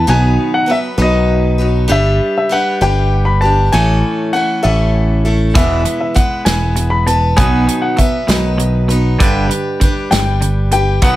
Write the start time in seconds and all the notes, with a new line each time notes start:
0.07 B1 B2 D#3 F#3 B3 D#4 B4 G#5
0.54 F#5
0.66 F#3 B3 B4
0.71 E5
0.98 B1 B2 D#3 F#3 B3 D#4 B4
1.02 D#5
1.58 F#3 B3 D#4 B4
1.88 G1 G3 D4 G4 B4 E5
2.37 E5
2.49 G3 D4 G4 B4 F#5
2.81 G1 G3 D4 G4 B4 G5
3.25 B5
3.41 G4 B4 A5
3.45 D4
3.72 A1 A2 E3 A3 C#4 E4 A4 G#5
4.33 A3 C#4 E4 A4 F#5
4.63 A1 A2 E3 A3 C#4 E4 A4 E5
5.25 A3 C#4 E4 A4
5.54 E1 E2 B2 E3 G#3 B3 E4 B4 E5, kick, closed hi-hat
5.85 E2 B2, closed hi-hat
6.00 E5
6.14 E2 B2 G#3 B3 E4 B4 F#5, kick, closed hi-hat
6.45 E1 E2 B2 E3 G#3 B3 E4 B4 G#5, snare, closed hi-hat
6.76 E2 B2, closed hi-hat
6.90 B5
7.06 E2 B2 E4 B4 A5, closed hi-hat
7.10 B3
7.37 B1 B2 D#3 F#3 B3 D#4 B4 G#5, kick, closed hi-hat
7.67 B2 F#3, closed hi-hat
7.82 F#5
7.96 B2 F#3 B3 B4 E5, kick, closed hi-hat
8.27 B1 B2 D#3 F#3 B3 D#4 B4 D#5, snare, closed hi-hat
8.58 B2 F#3, closed hi-hat
8.88 B2 F#3 B3 D#4 B4, closed hi-hat
8.92 F#3
9.19 G1 G2 D3 G3 D4 G4 B4, kick, closed hi-hat
9.49 G2 D3, closed hi-hat
9.80 G2 D3 G3 D4 G4, kick, closed hi-hat
9.84 B4
10.11 G1 G2 D3 G3 D4 G4 B4 G5, snare, closed hi-hat
10.41 G2 D3, closed hi-hat
10.71 G2 D3 G4 B4 G5, closed hi-hat
10.75 D4
11.02 B1 B2 D#3 F#3 B3 D#4 B4 F#5, kick, closed hi-hat